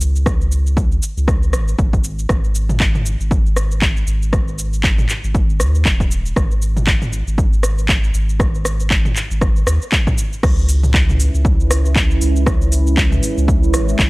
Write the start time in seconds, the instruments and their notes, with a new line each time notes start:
0.01 sub bass C#2, cabasa
0.16 cabasa
0.26 kick, cross-stick, cabasa
0.41 cabasa
0.52 cabasa
0.67 cabasa
0.77 kick, cabasa
0.92 cabasa
1.03 cabasa
1.17 sub bass C#2, cabasa
1.28 kick, cross-stick, cabasa
1.43 cabasa
1.53 sub bass G#1, cross-stick, cabasa
1.68 cabasa
1.79 sub bass G#1, kick, cabasa
1.93 kick, cabasa
2.04 cabasa
2.19 cabasa
2.29 sub bass G#1, kick, cross-stick, cabasa
2.44 cabasa
2.55 cabasa
2.69 mid tom, cabasa
2.80 kick, clap, cabasa
2.95 mid tom, cabasa
3.06 cabasa
3.20 sub bass G#1, cabasa
3.31 kick, cabasa
3.46 cabasa
3.57 cross-stick, cabasa
3.72 cabasa
3.82 kick, clap, cabasa
3.97 cabasa
4.07 sub bass G#1, cabasa
4.22 cabasa
4.33 kick, cross-stick, cabasa
4.48 cabasa
4.59 cabasa
4.73 cabasa
4.84 kick, clap, cabasa
4.98 mid tom, cabasa
5.09 clap, cabasa
5.24 sub bass G#1, cabasa
5.35 kick, cabasa
5.50 cabasa
5.60 sub bass D#2, cross-stick, cabasa
5.75 cabasa
5.85 sub bass D#1, kick, clap, cabasa
6.00 kick, cabasa
6.11 cabasa
6.26 cabasa
6.36 sub bass G#1, kick, cross-stick, cabasa
6.51 cabasa
6.62 cabasa
6.77 mid tom, cabasa
6.87 kick, clap, cabasa
7.02 mid tom, cabasa
7.13 cabasa
7.27 sub bass G#1, cabasa
7.38 kick, cabasa
7.53 cabasa
7.63 cross-stick, cabasa
7.78 cabasa
7.89 kick, clap, cabasa
8.04 cabasa
8.14 sub bass G#1, cabasa
8.29 cabasa
8.40 kick, cross-stick, cabasa
8.55 cabasa
8.65 cross-stick, cabasa
8.80 cabasa
8.91 kick, clap, cabasa
9.05 mid tom, cabasa
9.16 clap, cabasa
9.31 sub bass G#1, cabasa
9.41 kick, cross-stick, cabasa
9.56 cabasa
9.67 sub bass D#2, cross-stick, cabasa
9.82 cabasa
9.92 kick, clap, cabasa
10.07 kick, mid tom, cabasa
10.18 cabasa
10.33 cabasa
10.43 sub bass C#2, analog synth pad G#3 C#4 E4 B4, kick, cross-stick, crash, cabasa
10.58 cabasa
10.69 open hi-hat, cabasa
10.83 mid tom, cabasa
10.94 kick, clap, cabasa
11.09 mid tom, cabasa
11.20 open hi-hat, cabasa
11.34 sub bass C#2, cabasa
11.45 kick, cabasa
11.60 cabasa
11.71 cross-stick, open hi-hat, cabasa
11.85 cabasa
11.96 kick, clap, cabasa
12.11 cabasa
12.21 sub bass C#2, open hi-hat, cabasa
12.36 cabasa
12.46 kick, cross-stick, cabasa
12.62 cabasa
12.72 open hi-hat, cabasa
12.87 cabasa
12.97 kick, clap, cabasa
13.12 mid tom, cabasa
13.23 open hi-hat, cabasa
13.37 sub bass C#2, cabasa
13.48 kick, cabasa
13.63 cabasa
13.73 sub bass G#1, cross-stick, open hi-hat, cabasa
13.89 cabasa
13.99 sub bass G#1, kick, clap, cabasa